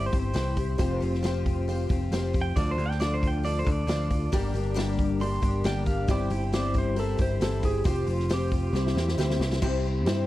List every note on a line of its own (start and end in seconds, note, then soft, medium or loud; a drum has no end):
0.00 0.12 G3 medium
0.00 0.12 C4 medium
0.00 0.77 C4 medium
0.00 0.12 E4 medium
0.00 0.27 E4 medium
0.00 0.77 E4 medium
0.00 0.11 G4 medium
0.00 0.27 G4 medium
0.00 0.77 G4 medium
0.00 0.27 C5 medium
0.00 0.78 C5 medium
0.06 0.18 C5 medium
0.12 0.33 G1 medium
0.12 0.33 G3 soft
0.12 0.33 C4 soft
0.12 0.33 E4 soft
0.12 0.34 G4 soft
0.12 kick medium
0.12 open hi-hat medium
0.20 1.05 C5 medium
0.33 0.75 C2 medium
0.33 0.56 G2 medium
0.33 0.56 E3 medium
0.33 0.56 G3 medium
0.33 0.56 C4 medium
0.33 0.56 E4 medium
0.33 0.71 E4 medium
0.33 0.71 G4 medium
0.33 0.55 G4 medium
0.33 0.71 C5 medium
0.33 snare loud
0.33 open hi-hat medium
0.56 0.78 G3 soft
0.56 0.78 C4 soft
0.56 0.79 E4 medium
0.56 0.78 G4 medium
0.56 kick medium
0.56 open hi-hat medium
0.78 0.99 F1 medium
0.78 1.00 F3 medium
0.78 1.01 C4 medium
0.78 2.54 C4 medium
0.78 1.15 F4 loud
0.78 2.54 F4 medium
0.78 1.01 F4 medium
0.78 1.15 G4 loud
0.78 2.54 G4 medium
0.78 0.99 G4 loud
0.78 1.15 C5 loud
0.78 2.54 C5 medium
0.78 kick medium
0.78 open hi-hat medium
1.00 1.86 F1 medium
1.00 1.23 C4 medium
1.00 1.23 F4 medium
1.00 1.23 G4 medium
1.00 open hi-hat medium
1.14 snare soft
1.23 1.67 F3 medium
1.23 1.68 C4 medium
1.23 1.59 F4 medium
1.23 1.69 F4 medium
1.23 1.59 G4 medium
1.23 1.68 G4 medium
1.23 1.60 C5 medium
1.23 snare loud
1.23 open hi-hat medium
1.46 kick medium
1.46 open hi-hat medium
1.68 1.90 F3 medium
1.68 1.90 C4 medium
1.68 2.04 F4 medium
1.68 1.90 F4 medium
1.68 2.04 G4 medium
1.68 1.88 G4 medium
1.68 2.04 C5 medium
1.68 open hi-hat medium
1.89 2.10 F1 medium
1.89 2.11 C4 soft
1.89 2.12 F4 soft
1.89 2.11 G4 medium
1.89 kick medium
1.89 open hi-hat medium
2.11 2.52 F1 medium
2.11 2.34 F3 medium
2.11 2.34 C4 medium
2.11 2.48 F4 medium
2.11 2.34 F4 medium
2.11 2.48 G4 medium
2.11 2.32 G4 medium
2.11 2.49 C5 medium
2.11 snare loud
2.11 open hi-hat medium
2.33 2.57 C4 soft
2.33 2.56 F4 soft
2.33 2.55 G4 soft
2.33 kick medium
2.33 open hi-hat medium
2.42 2.55 G5 medium
2.55 2.76 D2 medium
2.55 2.78 D3 medium
2.55 2.78 F3 medium
2.55 4.30 D4 medium
2.55 2.79 D4 medium
2.55 4.31 F4 medium
2.55 2.93 F4 medium
2.55 2.79 F4 medium
2.55 4.31 A4 medium
2.55 2.93 A4 medium
2.55 2.77 A4 medium
2.55 2.70 D5 medium
2.55 4.31 D5 medium
2.55 2.93 D5 loud
2.55 kick loud
2.55 open hi-hat medium
2.71 2.85 C5 medium
2.78 3.62 D2 medium
2.78 3.00 D4 soft
2.78 3.01 F4 soft
2.78 3.00 A4 medium
2.78 open hi-hat medium
2.86 3.00 G5 medium
2.91 snare soft
3.00 3.44 D3 medium
3.00 3.42 F3 medium
3.00 3.44 D4 medium
3.00 3.37 F4 medium
3.00 3.44 F4 medium
3.00 3.37 A4 medium
3.00 3.45 A4 medium
3.00 3.14 D5 medium
3.00 3.37 D5 medium
3.00 snare loud
3.00 open hi-hat medium
3.14 3.28 C5 medium
3.23 kick medium
3.23 open hi-hat medium
3.27 3.43 G5 medium
3.43 3.66 F3 medium
3.43 3.66 D4 medium
3.43 3.81 F4 medium
3.43 3.65 F4 medium
3.43 3.81 A4 medium
3.43 3.63 A4 medium
3.43 3.59 D5 medium
3.43 3.81 D5 medium
3.43 open hi-hat medium
3.59 3.72 C5 medium
3.65 3.86 D2 loud
3.65 3.88 D4 soft
3.65 3.88 F4 soft
3.65 3.87 A4 medium
3.65 kick medium
3.65 open hi-hat medium
3.72 4.58 D5 loud
3.87 4.28 D2 medium
3.87 4.10 D3 medium
3.87 4.10 F3 medium
3.87 4.10 D4 medium
3.87 4.25 F4 medium
3.87 4.11 F4 medium
3.87 4.25 A4 medium
3.87 4.09 A4 medium
3.87 4.25 D5 medium
3.87 snare loud
3.87 open hi-hat medium
4.10 4.32 D4 soft
4.10 4.33 F4 medium
4.10 4.32 A4 medium
4.10 kick medium
4.10 open hi-hat medium
4.32 4.52 G1 loud
4.32 4.54 G2 medium
4.32 4.54 D3 medium
4.32 4.55 G3 medium
4.32 4.55 A#3 medium
4.32 4.54 D4 loud
4.32 6.07 D4 medium
4.32 4.69 G4 loud
4.32 4.53 G4 medium
4.32 6.07 G4 medium
4.32 4.69 A#4 loud
4.32 6.08 A#4 medium
4.32 4.69 D5 loud
4.32 6.08 D5 medium
4.32 kick loud
4.32 open hi-hat medium
4.53 5.38 G1 medium
4.53 4.75 G3 soft
4.53 4.75 A#3 medium
4.53 4.75 D4 medium
4.53 4.76 G4 medium
4.53 open hi-hat medium
4.74 5.19 G2 medium
4.74 5.20 D3 medium
4.74 5.19 G3 medium
4.74 5.20 A#3 loud
4.74 5.21 D4 loud
4.74 5.13 G4 medium
4.74 5.23 G4 loud
4.74 5.13 A#4 medium
4.74 5.13 D5 medium
4.74 open hi-hat medium
4.79 snare loud
4.99 kick medium
4.99 open hi-hat medium
5.20 5.42 G3 medium
5.20 5.43 A#3 medium
5.20 5.42 D4 medium
5.20 5.57 G4 medium
5.20 5.41 G4 medium
5.20 5.57 A#4 medium
5.20 5.57 D5 medium
5.20 5.64 C6 loud
5.20 open hi-hat medium
5.42 5.62 G1 medium
5.42 5.64 G3 soft
5.42 5.64 A#3 soft
5.42 5.65 D4 medium
5.42 5.64 G4 medium
5.42 kick medium
5.42 open hi-hat medium
5.64 6.05 G1 medium
5.64 5.86 G2 medium
5.64 5.87 D3 medium
5.64 5.87 G3 medium
5.64 5.87 A#3 medium
5.64 5.87 D4 medium
5.64 6.01 G4 medium
5.64 5.86 G4 medium
5.64 6.02 A#4 medium
5.64 6.02 D5 medium
5.64 5.87 G5 medium
5.64 snare loud
5.64 open hi-hat medium
5.86 6.09 A#3 soft
5.86 6.09 D4 medium
5.86 6.09 G4 medium
5.86 6.08 F5 loud
5.86 kick medium
5.86 open hi-hat medium
5.90 6.08 G3 soft
6.08 6.29 G1 loud
6.08 6.30 G2 medium
6.08 6.31 E3 medium
6.08 6.31 G3 medium
6.08 7.83 C4 medium
6.08 6.31 C4 medium
6.08 7.83 E4 medium
6.08 6.45 E4 medium
6.08 6.30 E4 medium
6.08 7.83 G4 medium
6.08 6.45 G4 medium
6.08 6.29 G4 medium
6.08 7.83 C5 medium
6.08 6.45 C5 loud
6.08 6.31 D5 medium
6.08 kick loud
6.08 open hi-hat medium
6.30 7.15 G1 medium
6.30 6.52 G3 soft
6.30 6.53 C4 medium
6.30 6.53 E4 medium
6.30 6.52 G4 medium
6.30 6.52 G5 medium
6.30 open hi-hat medium
6.52 6.97 G2 medium
6.52 6.97 E3 medium
6.52 6.96 G3 medium
6.52 6.98 C4 medium
6.52 6.89 E4 medium
6.52 6.97 E4 medium
6.52 6.89 G4 medium
6.52 6.99 G4 medium
6.52 6.89 C5 medium
6.52 6.75 D5 medium
6.52 snare loud
6.52 open hi-hat medium
6.74 kick medium
6.74 open hi-hat medium
6.78 6.98 C5 medium
6.96 7.19 G3 medium
6.96 7.19 C4 medium
6.96 7.33 E4 medium
6.96 7.18 E4 medium
6.96 7.33 G4 medium
6.96 7.16 G4 medium
6.96 7.20 A4 medium
6.96 7.33 A#4 medium
6.96 open hi-hat medium
7.17 7.39 G1 loud
7.17 7.41 C4 soft
7.17 7.41 E4 medium
7.17 7.40 G4 medium
7.17 kick medium
7.17 open hi-hat medium
7.22 7.41 G3 soft
7.22 7.42 C5 medium
7.40 7.81 G1 medium
7.40 7.63 G2 medium
7.40 7.63 E3 medium
7.40 7.63 G3 medium
7.40 7.63 C4 medium
7.40 7.77 E4 medium
7.40 7.62 E4 medium
7.40 7.77 G4 medium
7.40 7.61 G4 medium
7.40 7.63 A4 medium
7.40 7.77 C5 medium
7.40 snare loud
7.40 open hi-hat medium
7.63 7.84 G3 soft
7.63 7.84 C4 soft
7.63 7.85 E4 medium
7.63 7.85 G4 medium
7.63 7.86 G#4 medium
7.63 kick medium
7.63 open hi-hat medium
7.84 8.05 F1 loud
7.84 8.07 F3 medium
7.84 8.07 C4 medium
7.84 8.72 C4 medium
7.84 8.22 F4 medium
7.84 8.08 F4 medium
7.84 8.73 F4 medium
7.84 8.22 G4 medium
7.84 8.07 G4 medium
7.84 8.06 G4 medium
7.84 8.73 G4 medium
7.84 8.22 C5 loud
7.84 8.73 C5 medium
7.84 kick loud
7.84 open hi-hat medium
8.07 8.69 F1 medium
8.07 8.29 C4 soft
8.07 8.30 F4 medium
8.07 8.29 G4 medium
8.07 open hi-hat medium
8.20 snare soft
8.29 8.73 F3 medium
8.29 8.74 C4 medium
8.29 8.66 F4 medium
8.29 8.74 F4 medium
8.29 8.66 G4 medium
8.29 8.74 G4 medium
8.29 8.53 G4 medium
8.29 8.66 C5 medium
8.29 snare loud
8.29 open hi-hat medium
8.52 9.60 G4 medium
8.52 kick medium
8.52 open hi-hat medium
8.73 8.93 C2 loud
8.73 8.95 G3 medium
8.73 9.60 C4 medium
8.73 8.96 C4 medium
8.73 9.60 E4 medium
8.73 9.10 E4 medium
8.73 8.96 E4 medium
8.73 9.61 G4 medium
8.73 9.10 G4 medium
8.73 8.95 G4 medium
8.73 9.61 C5 medium
8.73 9.11 C5 medium
8.73 snare medium
8.87 snare medium
8.96 9.15 E2 medium
8.96 9.17 C4 soft
8.96 9.18 E4 soft
8.96 9.18 G4 medium
8.96 snare medium
9.08 snare medium
9.18 9.37 D2 medium
9.18 9.40 C3 medium
9.18 9.40 G3 medium
9.18 9.40 C4 loud
9.18 9.54 E4 medium
9.18 9.40 E4 medium
9.18 9.54 G4 medium
9.18 9.38 G4 loud
9.18 9.54 C5 loud
9.18 snare medium
9.31 snare medium
9.39 9.59 C2 medium
9.39 9.62 C4 medium
9.39 9.62 E4 medium
9.39 9.61 G4 medium
9.39 snare loud
9.53 snare medium
9.61 10.07 C2 loud
9.61 9.84 C3 medium
9.61 9.84 G3 medium
9.61 10.27 C4 medium
9.61 9.98 C4 medium
9.61 9.84 C4 medium
9.61 10.27 E4 medium
9.61 9.98 E4 medium
9.61 9.85 E4 medium
9.61 10.27 G4 medium
9.61 9.98 G4 medium
9.61 9.84 G4 medium
9.61 10.27 C5 medium
9.61 9.98 C5 loud
9.61 kick loud
9.61 crash loud
9.61 crash medium
9.85 10.06 C4 medium
9.85 10.07 E4 medium
9.85 10.06 G4 medium
10.06 10.27 G2 medium
10.06 10.27 C3 loud
10.06 10.27 G3 medium
10.06 10.27 C4 medium
10.06 10.27 E4 medium
10.06 10.27 G4 medium
10.06 10.27 G4 loud
10.06 10.27 C5 loud
10.06 snare loud
10.06 crash medium